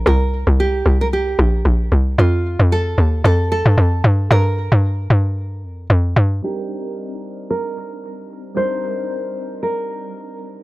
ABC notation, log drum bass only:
X:1
M:4/4
L:1/16
Q:"Swing 16ths" 1/4=113
K:Cdor
V:1 name="Log drum bass" clef=bass
C,,3 C,,3 C,,4 B,,,2 B,,,2 C,,2 | F,,3 F,,3 E,,2 F,,3 G,, F,,2 G,,2 | G,,3 G,,3 G,,4 F,,2 F,,2 G,,2 | z16 |
z16 |]